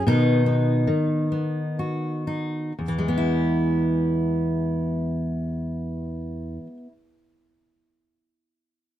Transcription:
steel-string acoustic guitar
0.07 B2 D#3 B3 D#4
0.46 B3
0.87 D#3
1.32 B3
1.79 F#4
2.27 D#4
2.79 E2
2.88 E3
2.98 G#3
3.08 B3
3.18 E4

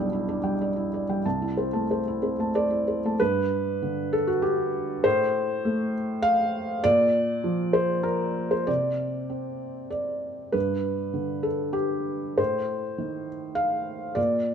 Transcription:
felt piano
Already playing: B1 G3 D4 E4 G5
0.00 D5
0.13 E4
0.29 D4 D5
0.43 G3 G5
0.61 D5
0.76 E4
0.94 D5
1.09 G3 G5
1.25 C2 A5
1.42 E4
1.57 C4 C5
1.73 A3 A5
1.91 C5
2.08 E4
2.22 C4 C5
2.39 A3 A5
2.55 C5 D5
2.70 E4
2.88 C5
3.05 A3 A5
3.20 G2 B4
3.82 D3
4.13 A4
4.27 F#4
4.42 G4
5.04 A2 C5
5.65 A3
6.22 F5
6.84 A#2 D5
7.44 F3
7.73 C5
8.03 A#4
8.51 C5
8.67 C3 D5
9.30 C4
9.90 D5
10.52 G2 B4
11.14 D3
11.43 A4
11.73 G4
12.38 A2 C5
12.98 D#3
13.55 F5
14.15 A#2 D5

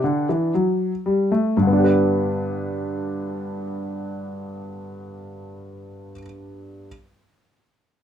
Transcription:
grand piano
Already playing: B3 D4 G4
0.04 D3
0.29 E3
0.54 F#3
1.06 G3
1.32 A3
1.57 G2
1.62 D3
1.67 B3
1.73 D4
1.79 G4
1.84 B4

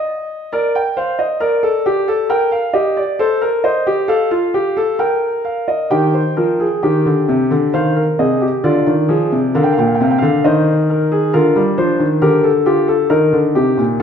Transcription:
grand piano
Already playing: D#5
0.52 A#4 D5
0.75 G5
0.97 C5 F5
1.19 D#5
1.40 A#4 D5
1.63 A4
1.86 G4
2.08 A4
2.30 A#4 G5
2.52 F5
2.73 G4 D#5
2.97 D5
3.19 A4 C5
3.42 A#4
3.64 C5 D#5
3.87 G4
4.08 A4 F5
4.31 F4
4.54 G4
4.77 A4
4.99 A#4 G5
5.45 F5
5.68 D#5
5.90 D#3 G4 G5
6.14 C5
6.37 F3 A#4
6.60 G#4
6.83 D#3 G4
7.06 D3
7.28 C3
7.51 D3
7.73 D#3 C5 F5
7.96 A#4
8.19 C3 G#4 D#5
8.41 G4
8.64 D3 F4 D5
8.87 D#3
9.09 F3 G#4
9.32 C3
9.55 D3 A#4 F5
9.64 G5
9.72 F5
9.78 A#2 G5
9.87 F5
9.95 G5
10.00 C3 F5
10.11 G5
10.18 D3 F5
10.44 D#3 C5 D#5
10.90 A#4
11.12 G#4
11.34 D3 F4 A#4
11.56 G3
11.78 F3 D4 C5
11.99 D#3
12.22 D3 G4 A#4
12.44 A4
12.66 F4 G4
12.88 A4
13.10 D#3 D#4 A#4
13.33 D3
13.55 C3 G4
13.77 A#2

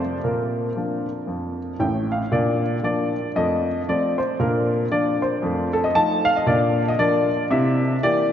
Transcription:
upright piano
Already playing: F2 C5
0.24 A#2 A#4
0.76 F3 A#3 D4
1.27 F2
1.79 A1 A2 G5
2.12 F5
2.32 A#2 D4 D5
2.83 F3 A#3 D4 D5
3.36 F2 A3 D#5
3.88 F3 A3 C4 D5
4.18 C5
4.39 A#2 D4 A#4
4.91 F3 A#3 D4 D5
5.22 C5
5.42 F2 A3
5.73 A4
5.84 D#5
5.95 F3 A3 D#4 A5
6.25 F5
6.36 D#5
6.46 A#2 D4 D5
6.88 D#5
6.99 F3 A#3 D4 D5
7.51 C3 E4 E5
8.03 E3 A#3 G4 D5

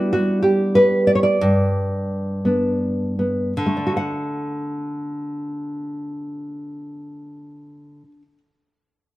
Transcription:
nylon-string guitar
Already playing: G3 B3 D4 E4 F#4
0.13 F#4
0.43 G4
0.75 B4
1.07 D5
1.15 C#5
1.23 D5
1.41 G2
2.45 B3 D4
3.19 B3
3.57 D3
3.66 A3
3.77 D4
3.87 F#4
3.97 F#5

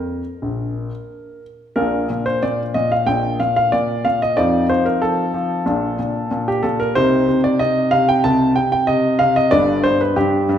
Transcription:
grand piano
Already playing: F2 A#4
0.42 A#1
1.76 A#1 A#2 A#3 D4 A#4
2.10 A#2
2.26 C5
2.43 A#2 D5
2.74 A#2 D#5
2.92 F5
3.07 A#1 A#2 G5
3.40 A#2 F5
3.56 F5
3.72 A#2 D5
4.05 A#2 F5
4.22 D#5
4.37 F2 F3 C4 D#4 D5
4.69 F3 C5
4.86 A#4
5.02 F3 A4
5.34 F3
5.66 A#1 A#2 D4
5.99 A#2
6.31 A#2
6.48 G4
6.63 A#2 A4
6.80 A#4
6.95 C2 C3 C4 D#4 C5
7.28 C3
7.44 D5
7.59 C3 D#5
7.91 C3 F5
8.09 G5
8.24 C2 C3 A5
8.56 C3 G5
8.72 G5
8.87 C3 D#5
9.19 C3 F5
9.36 D#5
9.51 G1 G2 B3 D4 D5
9.84 G2 C5
10.01 B4
10.16 G2 G4
10.49 G2

